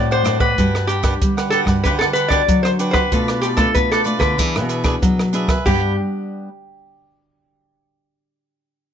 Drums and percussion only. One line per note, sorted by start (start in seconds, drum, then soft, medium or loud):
0.12 closed hi-hat soft
0.26 cross-stick medium
0.26 closed hi-hat soft
0.40 kick medium
0.58 kick medium
0.58 closed hi-hat medium
0.75 cross-stick medium
0.89 closed hi-hat soft
1.04 kick medium
1.04 cross-stick medium
1.04 closed hi-hat soft
1.22 kick medium
1.22 closed hi-hat medium
1.38 cross-stick medium
1.38 closed hi-hat soft
1.52 closed hi-hat soft
1.67 kick medium
1.67 cross-stick medium
1.85 kick medium
1.85 closed hi-hat medium
2.01 cross-stick medium
2.15 closed hi-hat medium
2.30 kick medium
2.30 cross-stick medium
2.49 kick medium
2.49 closed hi-hat medium
2.65 cross-stick medium
2.65 closed hi-hat soft
2.79 closed hi-hat medium
2.94 kick medium
2.94 cross-stick medium
3.12 kick medium
3.12 closed hi-hat medium
3.28 cross-stick medium
3.43 closed hi-hat medium
3.58 kick medium
3.58 cross-stick medium
3.58 closed hi-hat soft
3.75 kick medium
3.75 closed hi-hat medium
3.92 cross-stick medium
3.92 closed hi-hat soft
4.07 closed hi-hat soft
4.21 kick medium
4.21 cross-stick medium
4.39 kick medium
4.39 closed hi-hat medium
4.56 cross-stick medium
4.70 closed hi-hat soft
4.84 kick medium
4.84 cross-stick medium
5.03 kick medium
5.03 closed hi-hat medium
5.19 cross-stick medium
5.34 closed hi-hat soft
5.48 kick medium
5.48 cross-stick medium
5.48 closed hi-hat soft
5.66 kick medium
5.66 crash medium